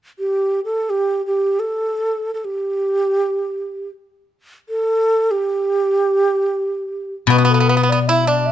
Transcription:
0.19 G4
0.65 A4
0.90 G4
1.26 G4
1.60 A4
2.34 A4
2.45 G4
4.69 A4
5.31 G4
7.27 B2 B3
7.31 B4
7.38 B3
7.45 B3
7.50 B3 A4
7.60 B3
7.69 B3 B4
7.77 B3
7.83 B3
7.89 B3 D5
8.08 E4 E5
8.27 D4 D5
8.46 E5

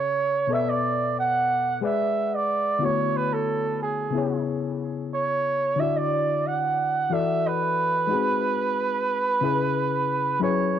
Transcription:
Already playing: C#3 C#4 G#4 B4 C#5 E5
0.47 B2 B3 A4
0.52 B4 D5 E5
0.69 D5
1.19 F#5
1.81 G#3 G#4 B4 D5 F#5
1.85 E5
2.35 D5
2.79 D3 B3 E4
2.83 A3 F#4 C#5
3.17 B4
3.33 A4
3.83 G#4
4.10 C#3 B3 E4
4.16 G#4 C#5
5.14 C#5
5.76 D3 D4 E4 E5
5.81 F#4 D5
5.97 D5
6.47 F#5
7.10 E3 E4 F#4 A4 D5 E5
7.47 B4
8.07 G#3 D#4 F#4
8.13 C4 G#4
9.41 C#3 C#4 E4 G#4 B4
10.40 F#3 C#4 E4 G#4 B4 C#5

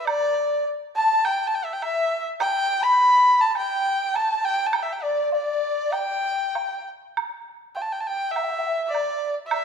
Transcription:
0.05 D5, high woodblock
0.95 A5
1.24 G5, high woodblock
1.47 A5
1.55 G5
1.64 E5
1.73 G5
1.82 E5, high woodblock
2.40 G5, high woodblock
2.47 A5
2.52 G5
2.81 B5
3.41 A5
3.47 A5
3.55 G5, high woodblock
4.13 A5, high woodblock
4.43 G5
4.66 A5
4.73 G5, high woodblock
4.83 E5
4.93 G5
5.02 D5
5.32 D5, low woodblock
5.91 G5, high woodblock
6.55 high woodblock, low woodblock
7.17 high woodblock
7.75 G5, low woodblock
7.81 A5
7.92 G5
8.00 A5
8.07 G5
8.31 E5
8.36 E5, high woodblock
8.43 G5
8.50 E5
8.58 G5
8.66 E5
8.86 D5 E5
8.93 D5, high woodblock
9.47 E5
9.51 E5, high woodblock

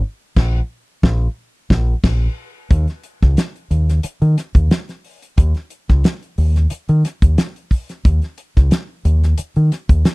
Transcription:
0.36 A#1, kick, snare, crash
1.03 A#1, kick, snare
1.70 A#1, kick, snare
2.04 A#1, kick, snare, crash
2.71 D#2, kick, closed hi-hat
2.88 snare, closed hi-hat
3.03 closed hi-hat
3.22 C#2, kick, snare, closed hi-hat
3.37 snare, closed hi-hat
3.56 closed hi-hat
3.71 D#2, closed hi-hat
3.89 snare, closed hi-hat
4.03 muted fingered electric bass stroke, closed hi-hat
4.22 D#3, closed hi-hat
4.38 snare, closed hi-hat
4.55 D#2, kick, closed hi-hat
4.71 snare, closed hi-hat
4.89 snare, closed hi-hat
5.04 open hi-hat
5.22 closed hi-hat
5.38 D#2, kick, closed hi-hat
5.55 snare, closed hi-hat
5.70 closed hi-hat
5.89 C#2, kick, snare, closed hi-hat
6.04 snare, closed hi-hat
6.23 closed hi-hat
6.38 D#2, open hi-hat
6.56 snare, closed hi-hat
6.70 muted fingered electric bass stroke, closed hi-hat
6.89 D#3, closed hi-hat
7.05 snare, closed hi-hat
7.22 D#2, kick, closed hi-hat
7.38 snare, closed hi-hat
7.56 closed hi-hat
7.71 kick, open hi-hat
7.89 snare, closed hi-hat
8.05 D#2, kick, closed hi-hat
8.22 snare, closed hi-hat
8.38 closed hi-hat
8.57 C#2, kick, snare, closed hi-hat
8.71 snare, closed hi-hat
9.05 D#2, closed hi-hat
9.23 snare, closed hi-hat
9.38 muted fingered electric bass stroke, closed hi-hat
9.56 D#3, closed hi-hat
9.72 snare, closed hi-hat
9.89 D#2, kick, closed hi-hat
10.05 snare, closed hi-hat

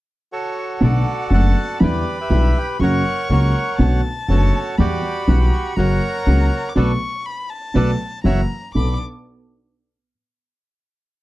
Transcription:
0.32 F#4 A4 C#5
0.80 B1 B2 D3 A3 B3 D4 F#4 A4 D5 F#5
1.30 F#1 F#2 D3 A3 B3 D4 F#4 A4 D5 A5
1.34 F#5
1.80 E2 D3 E3 G3 B3 D4 E4 G4 B4 B5
1.84 D5
2.20 G4 B4 E5
2.29 B1 B2 D3 G3 B3 D4 E4
2.58 G5
2.79 F#1 F#2 C#3 F#3 A#3 C#4 F#4 A#4 C#5 C#6
2.83 F#5
3.29 C#2 C#3 F#3 A#3 C#4 F#4 A#4 C#5 F#5
3.79 B1 B2 D3 A3 B3 D4 F#4 A4 A5
4.28 F#1 F#2 D3 A3 B3 D4 F#4 A4 C#5
4.78 E2 E3 G3 B3 E4 F#4 G4 D5 B5
5.27 B1 B2 E3 G3 B3 E4 F#4 F#5
5.41 D6
5.53 C#6
5.76 F#1 F#2 C#3 F#3 A#3 C#4 F#4 A#4 C#5 F#5 A#5
6.26 C#2 C#3 F#3 A#3 C#4 F#4
6.69 D6
6.75 B1 F#3 A3 B3 D4 F#4 A4 B4 D5 C#6
7.26 B5
7.50 A5
7.74 B1 F#3 A3 B3 D4 F#4 A4 B4 D5
8.24 F#1 E3 F#3 A#3 C#4 E4 F#4 C#5 E5 F#5 A#5
8.74 B1 B3 D4 A4 B5 D6

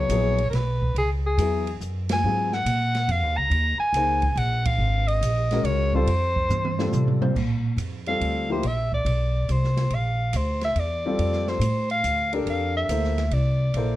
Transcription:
Already playing: C#5
0.09 A#1 F#3 B3 E4 G#4, hi-hat pedal, ride
0.38 ride
0.50 B1 A#4, snare, ride
0.56 B4
0.82 kick
0.95 C#2 G#4, ride
1.26 G#4
1.37 E2 F#3 B3 E4 G#4, hi-hat pedal, ride
1.67 ride
1.81 F#2, hi-hat pedal
2.09 G#5, snare, ride
2.24 G#2 F#3 C4 F4 G#4
2.53 F#5, snare
2.65 A#2, hi-hat pedal, ride
2.95 snare, ride
3.08 F2 F5, ride
3.23 D#2
3.37 C#2 A#5
3.50 D#2, ride
3.79 G#5, muted upright bass stroke
3.93 C#2 A#3 D#4 G#4 C5, hi-hat pedal, ride
4.22 kick, ride
4.36 A#1 F#5, ride
4.65 F5, kick, ride
4.78 G#1
5.08 D#5, ride
5.21 A#1, hi-hat pedal, ride
5.51 G#3 C#4 F#4 A#4, snare, ride
5.64 C#2 C#5, ride
5.94 G3 C4 F4 A4 C5, kick
6.06 F2, ride
6.36 kick
6.49 G2, hi-hat pedal, mid tom
6.65 mid tom
6.79 G3 C4 F4 A4, snare
6.92 C3, floor tom, hi-hat pedal
7.08 floor tom
7.21 A#2 G3 C4 F4 C5, floor tom
7.36 A#2, kick, crash
7.76 F2, hi-hat pedal, ride
8.06 G3 C4 F4 A4 F5, ride
8.20 D2, ride
8.50 F3 A#3 E4 G4 C5
8.63 A#1 E5, ride
8.92 D5, kick
9.05 B1, ride
9.49 C2 C5, hi-hat pedal, ride
9.64 snare
9.77 snare, ride
9.90 A#1, ride
9.95 F5
10.33 D2 C5, hi-hat pedal, ride
10.61 E5, snare, ride
10.75 E2, ride
10.79 D5
11.06 G3 C4 F4 A4
11.19 F2, ride
11.33 snare
11.47 C5, snare
11.59 A2, hi-hat pedal, ride
11.90 F5, ride
12.04 D2, hi-hat pedal, ride
12.33 D4 G4 A4 A#4 D5, ride
12.46 F2 F5, ride
12.77 E5
12.89 D2 A#3 E4 A4 C5, hi-hat pedal, ride
13.04 snare
13.18 snare, ride
13.31 C2 D5, ride
13.74 A#1 A#3 E4 A4 C5, ride

